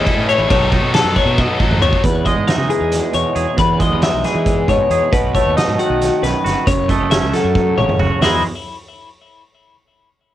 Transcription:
Already playing: clean electric guitar D#5
0.04 overdriven electric guitar A3 C#4 E4 A4, kick, ride
0.16 fingered electric bass A2
0.27 overdriven electric guitar A2 E3 A3 C#4 E4 A4, clean electric guitar C#5, ride
0.38 fingered electric bass A1
0.49 fingered electric bass B1, overdriven electric guitar B2 D#3 F#3 B3 D#4 A4, clean electric guitar C#5, kick, ride
0.71 overdriven electric guitar F#3 B3 D#4 A4, kick, ride
0.82 fingered electric bass B2
0.93 overdriven electric guitar F#3 B3 D#4 A4, clean electric guitar A4, snare, ride
1.04 fingered electric bass F#2
1.16 clean electric guitar C#5, kick, ride
1.26 fingered electric bass B2
1.38 clean electric guitar D#5, kick
1.59 fingered electric bass A1, overdriven electric guitar F#3 B3 D#4 A4, kick
1.71 mid tom
1.80 fingered electric bass D#2, overdriven electric guitar B2 D#3 F#3 B3 D#4 A4, clean electric guitar C#5, floor tom
1.93 kick
2.04 fingered electric bass E2, clean electric guitar E2 B4, kick, closed hi-hat
2.25 clean electric guitar G#3 D#5, kick, closed hi-hat
2.35 fingered electric bass G#2
2.47 clean electric guitar D#4 E5, snare, closed hi-hat
2.58 fingered electric bass C#3
2.69 clean electric guitar E3 G#4, closed hi-hat
2.81 fingered electric bass E2
2.92 snare, closed hi-hat
3.13 fingered electric bass E2, clean electric guitar B2 C#5, closed hi-hat
3.35 fingered electric bass E2, clean electric guitar G#4, closed hi-hat
3.57 clean electric guitar E2 B4, fingered electric bass E3, kick, closed hi-hat
3.79 clean electric guitar G#3 D#5, kick, closed hi-hat
3.90 fingered electric bass E2
4.02 clean electric guitar D#4 E5, snare, closed hi-hat
4.13 fingered electric bass B1
4.24 clean electric guitar E3 G#4, snare, closed hi-hat
4.35 fingered electric bass E3
4.46 kick, closed hi-hat
4.68 fingered electric bass G#2, clean electric guitar B2 C#5, kick, closed hi-hat
4.90 fingered electric bass E2, clean electric guitar G#4, closed hi-hat
5.12 fingered electric bass B1, clean electric guitar B2 B4, kick, closed hi-hat
5.35 clean electric guitar A3 C#5, kick, closed hi-hat
5.46 fingered electric bass D#2
5.57 clean electric guitar D#4 D#5, snare, closed hi-hat
5.68 fingered electric bass G#2
5.78 clean electric guitar D#3 F#4, closed hi-hat
5.90 fingered electric bass B1
6.02 snare, closed hi-hat
6.22 fingered electric bass B1, clean electric guitar F#2 B4, snare, closed hi-hat
6.44 fingered electric bass G1, clean electric guitar F#4, snare, closed hi-hat
6.67 fingered electric bass F#1, clean electric guitar F#2 C#5, kick, closed hi-hat
6.89 clean electric guitar A3 D#5, kick, closed hi-hat
7.00 fingered electric bass F#1
7.11 clean electric guitar C#4 E5, snare, closed hi-hat
7.22 fingered electric bass C#2
7.33 clean electric guitar F#3 A4, snare, closed hi-hat
7.44 fingered electric bass F#2
7.55 kick
7.77 fingered electric bass A1, clean electric guitar C#3 C#5, mid tom
7.89 mid tom
7.99 fingered electric bass F#1, clean electric guitar F#4, floor tom
8.21 clean electric guitar E2 E3 G#3 D#4 E4 G#4, fingered electric bass E2, snare, open hi-hat

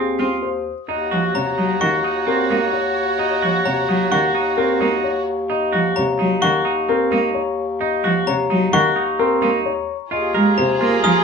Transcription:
Already playing: bass clarinet D#2, clean electric guitar C4, grand piano G#4
0.19 cello C4, clean electric guitar F4
0.43 grand piano C5
0.88 bass clarinet D#2, clean electric guitar D#4, violin section F#4 C#5, oboe F#4, grand piano D#5
1.11 cello F3, clean electric guitar F#4
1.35 cello C3, grand piano C#5, glockenspiel A#5
1.58 cello F#3, clean electric guitar D#4
1.81 cello D#3, clean electric guitar F#4, grand piano F#5, glockenspiel C#6
2.04 clean electric guitar D#4
2.27 clean electric guitar C4, grand piano A#4
2.50 cello A#3, clean electric guitar D#4
2.73 grand piano C#5
3.18 clean electric guitar D#4, grand piano D#5
3.42 cello F3, clean electric guitar F#4
3.65 cello C3, grand piano C#5, glockenspiel A#5
3.88 cello F#3, clean electric guitar D#4
4.11 cello D#3, clean electric guitar F#4, grand piano F#5, glockenspiel C#6
4.35 clean electric guitar D#4
4.57 clean electric guitar C4, grand piano A#4
4.81 cello A#3, clean electric guitar D#4
5.04 grand piano C#5
5.50 clean electric guitar D#4, grand piano D#5
5.73 cello F3, clean electric guitar F#4
5.96 cello C3, grand piano C#5, glockenspiel A#5
6.19 cello F#3, clean electric guitar D#4
6.42 cello D#3, clean electric guitar F#4, grand piano F#5, glockenspiel C#6
6.65 clean electric guitar D#4
6.89 clean electric guitar C4, grand piano A#4
7.12 cello A#3, clean electric guitar D#4
7.34 grand piano C#5
7.80 clean electric guitar D#4, grand piano D#5
8.04 cello F3, clean electric guitar F#4
8.27 cello C3, grand piano C#5, glockenspiel A#5
8.50 cello F#3, clean electric guitar D#4
8.73 cello D#3, clean electric guitar F#4, grand piano F#5, glockenspiel C#6
8.96 clean electric guitar D#4
9.19 clean electric guitar C4, grand piano A#4
9.42 cello A#3, clean electric guitar D#4
9.66 grand piano C#5
10.11 bass clarinet D#2, clean electric guitar F4, violin section F4 G#4, oboe G#4, grand piano D#5
10.34 cello G#3, clean electric guitar A#4
10.57 cello C3, grand piano C5, glockenspiel A#5
10.81 cello A#3, clean electric guitar F4
11.03 cello F3, clean electric guitar A#4, grand piano G#5, glockenspiel D#6

